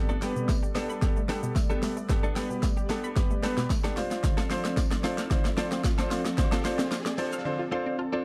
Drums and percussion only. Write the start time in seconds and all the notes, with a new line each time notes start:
0.09 shaker
0.22 snare, open hi-hat, shaker
0.36 shaker
0.49 kick, snare, closed hi-hat, tambourine, shaker
0.63 shaker
0.75 snare, open hi-hat, shaker
0.90 shaker
1.02 kick, snare, closed hi-hat, shaker
1.16 shaker
1.29 snare, open hi-hat, shaker
1.43 shaker
1.56 kick, snare, closed hi-hat, tambourine, shaker
1.70 shaker
1.83 snare, open hi-hat, shaker
1.97 shaker
2.09 kick, snare, closed hi-hat, shaker
2.23 shaker
2.36 snare, open hi-hat, shaker
2.51 shaker
2.63 kick, snare, closed hi-hat, tambourine, shaker
2.77 shaker
2.90 snare, open hi-hat, shaker
3.04 shaker
3.16 kick, snare, closed hi-hat, shaker
3.31 shaker
3.43 snare, open hi-hat, shaker
3.57 snare, shaker
3.70 kick, snare, closed hi-hat, tambourine, shaker
3.84 snare, shaker
3.97 snare, open hi-hat, shaker
4.11 snare, shaker
4.24 kick, snare, closed hi-hat, shaker
4.38 snare, shaker
4.50 snare, open hi-hat, shaker
4.65 snare, shaker
4.77 kick, snare, closed hi-hat, tambourine, shaker
4.91 snare, shaker
5.04 snare, open hi-hat, shaker
5.18 snare, shaker
5.31 kick, snare, closed hi-hat, shaker
5.45 snare, shaker
5.58 snare, open hi-hat, shaker
5.72 snare, shaker
5.84 kick, snare, closed hi-hat, tambourine, shaker
5.99 snare, shaker
6.11 snare, open hi-hat, shaker
6.25 snare, shaker
6.38 kick, snare, closed hi-hat, shaker
6.52 snare, shaker
6.65 snare, open hi-hat, shaker
6.79 snare, shaker
6.92 snare, closed hi-hat, tambourine, shaker
7.06 snare, shaker
7.18 open hi-hat, shaker
7.33 shaker